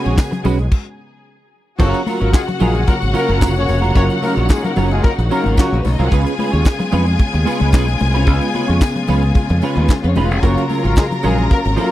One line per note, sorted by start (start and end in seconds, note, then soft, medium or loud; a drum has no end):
0.00 0.71 C#3 medium
0.00 0.71 G#3 medium
0.00 0.71 B3 medium
0.00 0.70 F#4 medium
0.00 0.70 G#4 medium
0.00 0.70 G#5 medium
0.05 0.16 A#1 medium
0.05 0.16 G#3 soft
0.05 0.16 C#4 soft
0.05 0.17 F#4 medium
0.05 0.18 C#5 medium
0.05 closed hi-hat soft
0.17 muted clean electric guitar stroke soft
0.17 kick loud
0.17 snare loud
0.17 clap medium
0.17 tambourine medium
0.17 muted conga soft
0.31 muted clean electric guitar stroke soft
0.31 closed hi-hat medium
0.31 low conga medium
0.44 0.68 B1 medium
0.44 0.65 G#3 medium
0.44 0.59 C#4 loud
0.44 0.58 F#4 medium
0.44 0.58 B4 medium
0.44 open hi-hat medium
0.44 tambourine medium
0.44 muted conga soft
0.44 low conga medium
0.59 muted clean electric guitar stroke medium
0.59 closed hi-hat soft
0.72 kick loud
0.72 crash medium
1.79 1.92 F#1 medium
1.79 6.07 C#3 medium
1.79 2.01 C#3 loud
1.79 2.00 F#3 medium
1.79 2.01 F#3 loud
1.79 6.08 F#3 medium
1.79 6.07 A#3 medium
1.79 2.01 A#3 loud
1.79 2.01 C#4 medium
1.79 2.01 F4 medium
1.79 5.62 F#4 medium
1.79 3.94 F#4 medium
1.79 2.01 F#4 loud
1.79 2.01 A#4 medium
1.79 5.62 F#5 loud
1.79 kick loud
1.79 crash loud
1.79 tambourine soft
1.79 muted conga soft
1.94 closed hi-hat medium
2.06 2.20 F#3 medium
2.06 2.20 C#4 soft
2.06 2.20 F4 medium
2.06 2.20 A#4 medium
2.06 open hi-hat medium
2.06 tambourine soft
2.06 muted conga soft
2.06 high conga medium
2.20 2.32 G#1 medium
2.20 2.31 F#3 medium
2.20 2.32 F#3 soft
2.20 2.31 A#3 medium
2.20 2.32 C#4 medium
2.20 2.31 F4 medium
2.20 2.33 F4 medium
2.20 2.31 A#4 medium
2.20 2.34 C#5 medium
2.20 closed hi-hat soft
2.33 2.42 G#3 medium
2.33 2.42 F4 medium
2.33 2.42 G#4 loud
2.33 muted clean electric guitar stroke soft
2.33 kick loud
2.33 snare loud
2.33 clap loud
2.33 tambourine medium
2.33 muted conga soft
2.47 muted clean electric guitar stroke medium
2.47 closed hi-hat medium
2.47 low conga medium
2.60 2.84 A#1 medium
2.60 2.81 F#3 medium
2.60 2.82 G#3 loud
2.60 2.75 C#4 medium
2.60 2.82 F4 loud
2.60 2.74 F4 medium
2.60 2.82 G#4 loud
2.60 2.74 A#4 loud
2.60 open hi-hat medium
2.60 tambourine medium
2.60 muted conga soft
2.60 low conga medium
2.75 muted clean electric guitar stroke soft
2.75 closed hi-hat soft
2.87 2.97 F#3 medium
2.87 2.97 A#3 medium
2.87 2.97 F4 medium
2.87 2.97 A#4 medium
2.87 muted clean electric guitar stroke soft
2.87 kick loud
2.87 closed hi-hat medium
2.87 tambourine soft
2.87 muted conga soft
3.01 3.13 G#1 medium
3.01 muted clean electric guitar stroke soft
3.01 closed hi-hat medium
3.13 3.29 F#3 medium
3.13 3.36 F#3 medium
3.13 3.37 A#3 loud
3.13 3.28 C#4 medium
3.13 3.28 F4 medium
3.13 3.36 F4 medium
3.13 3.27 A#4 medium
3.13 3.37 A#4 loud
3.13 open hi-hat medium
3.13 tambourine medium
3.13 muted conga soft
3.28 3.42 F#1 medium
3.28 3.39 F#3 medium
3.28 3.40 C#4 medium
3.28 3.40 F4 medium
3.28 3.41 A#4 medium
3.28 closed hi-hat soft
3.28 high conga medium
3.40 3.64 F1 loud
3.40 3.62 F#3 medium
3.40 3.55 C#4 medium
3.40 3.54 F4 medium
3.40 3.53 A#4 medium
3.40 kick loud
3.40 snare loud
3.40 clap loud
3.40 tambourine medium
3.55 3.78 A#3 loud
3.55 3.78 C#4 loud
3.55 3.78 F#4 loud
3.55 3.78 C#5 loud
3.55 muted clean electric guitar stroke medium
3.55 closed hi-hat soft
3.55 high conga soft
3.68 3.91 F1 medium
3.68 muted clean electric guitar stroke soft
3.68 snare soft
3.68 open hi-hat medium
3.68 tambourine medium
3.68 muted conga soft
3.68 high conga medium
3.82 3.93 F#3 medium
3.82 3.94 C#4 medium
3.82 3.95 F4 medium
3.82 3.95 A#4 medium
3.82 closed hi-hat medium
3.94 4.08 F#1 loud
3.94 4.16 F#3 medium
3.94 4.04 A#3 loud
3.94 4.16 C#4 medium
3.94 4.04 C#4 loud
3.94 6.10 D#4 medium
3.94 4.16 F4 medium
3.94 4.04 F#4 loud
3.94 4.17 A#4 loud
3.94 4.04 C#5 loud
3.94 kick loud
3.94 closed hi-hat medium
3.94 tambourine soft
4.10 closed hi-hat medium
4.22 4.36 F#3 medium
4.22 4.32 F#3 medium
4.22 4.32 A#3 medium
4.22 4.36 C#4 medium
4.22 4.35 F4 medium
4.22 4.32 F4 medium
4.22 4.32 A#4 medium
4.22 4.35 A#4 medium
4.22 open hi-hat medium
4.22 tambourine soft
4.22 muted conga soft
4.22 high conga medium
4.36 4.48 A#1 medium
4.36 4.47 F#3 medium
4.36 4.48 C#4 medium
4.36 4.48 F4 medium
4.36 4.49 C#5 medium
4.36 closed hi-hat soft
4.49 4.61 G#3 medium
4.49 4.61 F4 medium
4.49 4.61 G#4 loud
4.49 muted clean electric guitar stroke soft
4.49 kick loud
4.49 snare loud
4.49 clap loud
4.49 tambourine loud
4.49 muted conga soft
4.63 4.72 F#3 medium
4.63 4.72 A#3 medium
4.63 4.72 F4 medium
4.63 4.72 A#4 medium
4.63 muted clean electric guitar stroke soft
4.63 closed hi-hat medium
4.63 low conga medium
4.76 4.99 F#1 medium
4.76 4.97 F#3 medium
4.76 4.91 C#4 loud
4.76 4.90 F4 medium
4.76 4.90 A#4 loud
4.76 open hi-hat medium
4.76 tambourine medium
4.76 muted conga soft
4.76 low conga medium
4.91 5.01 G#3 loud
4.91 5.01 F4 loud
4.91 5.01 G#4 loud
4.91 muted clean electric guitar stroke soft
4.91 closed hi-hat medium
5.04 5.12 F#3 medium
5.04 5.12 A#3 loud
5.04 5.12 F4 loud
5.04 5.12 A#4 loud
5.04 muted clean electric guitar stroke soft
5.04 kick loud
5.04 closed hi-hat medium
5.04 tambourine soft
5.04 muted conga soft
5.18 5.29 A#1 medium
5.18 muted clean electric guitar stroke soft
5.18 closed hi-hat soft
5.29 5.45 F#3 medium
5.29 5.53 F#3 loud
5.29 5.53 A#3 loud
5.29 5.45 C#4 medium
5.29 5.52 F4 medium
5.29 5.45 F4 medium
5.29 5.53 A#4 loud
5.29 5.44 A#4 loud
5.29 open hi-hat medium
5.29 tambourine medium
5.29 muted conga soft
5.44 5.56 G#1 medium
5.44 5.56 F#3 medium
5.44 5.57 C#4 medium
5.44 5.57 F4 medium
5.44 5.58 A#4 medium
5.44 closed hi-hat soft
5.44 high conga medium
5.57 5.80 C#3 medium
5.57 5.78 F#3 medium
5.57 5.80 F#3 medium
5.57 5.80 A#3 medium
5.57 5.72 C#4 medium
5.57 5.72 F4 medium
5.57 5.80 F#4 loud
5.57 5.71 A#4 medium
5.57 kick loud
5.57 snare loud
5.57 clap medium
5.57 tambourine loud
5.71 5.83 A#1 medium
5.71 5.78 A#3 medium
5.71 5.78 A#4 medium
5.71 muted clean electric guitar stroke medium
5.71 closed hi-hat soft
5.71 high conga soft
5.78 5.84 B3 medium
5.78 5.85 B4 medium
5.84 5.97 B1 medium
5.84 5.91 C#4 medium
5.84 5.92 C#5 medium
5.84 muted clean electric guitar stroke soft
5.84 snare soft
5.84 open hi-hat medium
5.84 tambourine medium
5.84 muted conga soft
5.84 high conga medium
5.91 5.99 D#4 medium
5.91 5.99 D#5 medium
5.98 6.10 C2 loud
5.98 6.11 F#3 medium
5.98 6.11 C#4 medium
5.98 6.05 F4 medium
5.98 6.11 F4 medium
5.98 6.13 A#4 medium
5.98 6.05 F5 loud
5.98 closed hi-hat medium
6.04 6.11 F#4 loud
6.04 6.11 F#5 loud
6.10 6.24 C#2 loud
6.10 11.91 C#3 medium
6.10 6.32 G#3 medium
6.10 10.39 G#3 medium
6.10 10.39 B3 medium
6.10 6.32 C#4 loud
6.10 11.91 F4 medium
6.10 6.33 F4 medium
6.10 9.93 G#4 medium
6.10 6.33 B4 loud
6.10 9.93 G#5 loud
6.10 kick loud
6.10 closed hi-hat medium
6.10 tambourine soft
6.10 muted conga soft
6.26 closed hi-hat medium
6.38 6.52 G#3 medium
6.38 6.52 C#4 soft
6.38 6.51 F4 medium
6.38 6.51 B4 medium
6.38 open hi-hat medium
6.38 muted conga soft
6.38 high conga medium
6.52 6.64 D#2 loud
6.52 6.64 G#3 soft
6.52 6.64 C#4 soft
6.52 6.65 F4 medium
6.52 6.66 C#5 medium
6.52 closed hi-hat soft
6.64 muted clean electric guitar stroke soft
6.64 kick loud
6.64 snare loud
6.64 clap medium
6.64 tambourine loud
6.64 muted conga soft
6.79 muted clean electric guitar stroke soft
6.79 closed hi-hat soft
6.79 low conga medium
6.92 7.15 F2 medium
6.92 7.13 G#3 medium
6.92 7.06 C#4 medium
6.92 7.06 F4 medium
6.92 7.05 B4 loud
6.92 open hi-hat medium
6.92 tambourine medium
6.92 low conga medium
7.06 muted clean electric guitar stroke soft
7.06 closed hi-hat soft
7.19 muted clean electric guitar stroke soft
7.19 kick loud
7.19 closed hi-hat medium
7.19 muted conga soft
7.33 7.45 D#2 medium
7.33 muted clean electric guitar stroke soft
7.33 closed hi-hat medium
7.45 7.61 G#3 medium
7.45 7.60 C#4 medium
7.45 7.60 F4 medium
7.45 7.59 B4 medium
7.45 open hi-hat medium
7.45 tambourine medium
7.45 muted conga soft
7.60 7.73 C#2 medium
7.60 7.72 G#3 medium
7.60 7.72 C#4 medium
7.60 7.73 F4 medium
7.60 7.73 B4 medium
7.60 closed hi-hat soft
7.60 high conga medium
7.73 7.96 B1 loud
7.73 7.94 G#3 medium
7.73 7.87 C#4 medium
7.73 7.87 F4 medium
7.73 7.86 B4 medium
7.73 kick loud
7.73 snare loud
7.73 clap loud
7.73 tambourine medium
7.87 muted clean electric guitar stroke soft
7.87 closed hi-hat soft
7.87 high conga soft
7.99 8.27 C2 loud
7.99 muted clean electric guitar stroke soft
7.99 open hi-hat medium
7.99 tambourine medium
7.99 muted conga soft
7.99 high conga medium
8.14 8.24 G#3 soft
8.14 8.25 C#4 medium
8.14 8.26 F4 medium
8.14 8.27 B4 medium
8.14 closed hi-hat soft
8.26 8.39 C#2 loud
8.26 8.47 G#3 medium
8.26 8.47 C#4 medium
8.26 8.48 F4 medium
8.26 8.48 B4 medium
8.26 kick loud
8.26 closed hi-hat medium
8.26 tambourine soft
8.26 muted conga soft
8.41 closed hi-hat medium
8.54 8.69 G#3 soft
8.54 8.68 C#4 medium
8.54 8.67 F4 medium
8.54 8.68 B4 medium
8.54 open hi-hat medium
8.54 high conga medium
8.68 8.79 F2 medium
8.68 8.79 G#3 soft
8.68 8.80 C#4 soft
8.68 8.80 F4 medium
8.68 8.81 C#5 medium
8.68 closed hi-hat soft
8.80 muted clean electric guitar stroke soft
8.80 kick loud
8.80 snare loud
8.80 clap loud
8.80 tambourine medium
8.80 muted conga soft
8.96 muted clean electric guitar stroke soft
8.96 closed hi-hat medium
8.96 low conga medium
9.07 9.31 C#2 medium
9.07 9.29 G#3 loud
9.07 9.23 C#4 medium
9.07 9.23 F4 loud
9.07 9.22 B4 loud
9.07 open hi-hat medium
9.07 tambourine medium
9.07 muted conga soft
9.07 low conga loud
9.22 muted clean electric guitar stroke soft
9.22 closed hi-hat soft
9.35 muted clean electric guitar stroke soft
9.35 kick loud
9.35 closed hi-hat medium
9.35 tambourine soft
9.35 muted conga soft
9.49 9.60 F2 loud
9.49 muted clean electric guitar stroke medium
9.49 closed hi-hat soft
9.61 9.77 G#3 medium
9.61 9.76 C#4 medium
9.61 9.76 F4 medium
9.61 9.75 B4 medium
9.61 open hi-hat medium
9.61 tambourine medium
9.75 9.87 D#2 medium
9.75 9.92 G#3 medium
9.75 9.92 C#4 medium
9.75 9.92 F4 medium
9.75 9.92 B4 medium
9.75 closed hi-hat soft
9.75 high conga medium
9.88 kick loud
9.88 snare loud
9.88 clap medium
9.88 tambourine medium
9.88 muted conga soft
10.03 10.14 F2 medium
10.03 10.09 B3 medium
10.03 10.09 B4 medium
10.03 muted clean electric guitar stroke soft
10.03 closed hi-hat soft
10.03 high conga soft
10.09 10.16 C#4 medium
10.09 10.16 C#5 medium
10.15 10.31 E1 medium
10.15 10.37 G#3 medium
10.15 10.30 C#4 medium
10.15 10.23 D#4 medium
10.15 10.30 F4 medium
10.15 10.29 B4 medium
10.15 10.23 D#5 medium
10.15 open hi-hat medium
10.15 tambourine medium
10.15 muted conga soft
10.15 high conga medium
10.23 10.30 F4 medium
10.23 10.30 F5 medium
10.30 10.41 F1 loud
10.30 10.36 F#4 medium
10.30 10.36 F#5 loud
10.30 muted clean electric guitar stroke soft
10.30 closed hi-hat soft
10.36 10.43 G#4 medium
10.36 10.43 G#5 loud
10.42 10.55 F#1 loud
10.42 10.65 C#3 loud
10.42 10.63 F#3 medium
10.42 11.91 F#3 medium
10.42 10.65 F#3 loud
10.42 10.64 A#3 loud
10.42 11.91 A#3 medium
10.42 10.63 C#4 medium
10.42 10.64 F4 medium
10.42 10.65 F#4 loud
10.42 11.91 A#4 medium
10.42 10.64 A#4 medium
10.42 11.91 A#5 loud
10.42 kick loud
10.42 closed hi-hat medium
10.42 tambourine soft
10.57 closed hi-hat medium
10.69 10.84 F#3 medium
10.69 10.84 C#4 medium
10.69 10.83 F4 medium
10.69 10.83 A#4 medium
10.69 open hi-hat medium
10.69 tambourine soft
10.69 muted conga soft
10.69 high conga medium
10.84 10.95 G#1 medium
10.84 10.95 F#3 medium
10.84 10.95 F#3 soft
10.84 10.95 A#3 medium
10.84 10.96 C#4 medium
10.84 10.96 F4 medium
10.84 10.95 F4 medium
10.84 10.95 A#4 medium
10.84 10.97 C#5 medium
10.84 closed hi-hat soft
10.96 11.06 G#3 medium
10.96 11.05 F4 medium
10.96 11.06 G#4 medium
10.96 muted clean electric guitar stroke soft
10.96 kick loud
10.96 snare loud
10.96 clap medium
10.96 tambourine medium
11.11 muted clean electric guitar stroke soft
11.11 closed hi-hat medium
11.11 low conga medium
11.23 11.47 A#1 medium
11.23 11.44 F#3 loud
11.23 11.45 G#3 medium
11.23 11.38 C#4 loud
11.23 11.45 F4 loud
11.23 11.37 F4 medium
11.23 11.45 G#4 loud
11.23 11.37 A#4 loud
11.23 open hi-hat medium
11.23 tambourine medium
11.23 muted conga soft
11.23 low conga medium
11.38 muted clean electric guitar stroke soft
11.38 closed hi-hat soft
11.50 11.59 F#3 medium
11.50 11.59 A#3 medium
11.50 11.59 F4 medium
11.50 11.59 A#4 loud
11.50 muted clean electric guitar stroke medium
11.50 kick loud
11.50 closed hi-hat medium
11.50 muted conga soft
11.64 11.76 G#1 medium
11.64 muted clean electric guitar stroke soft
11.64 closed hi-hat medium
11.76 11.91 F#3 medium
11.76 11.91 F#3 loud
11.76 11.91 A#3 loud
11.76 11.90 C#4 loud
11.76 11.90 F4 medium
11.76 11.91 F4 loud
11.76 11.91 A#4 loud
11.76 11.89 A#4 loud
11.76 open hi-hat medium
11.76 tambourine medium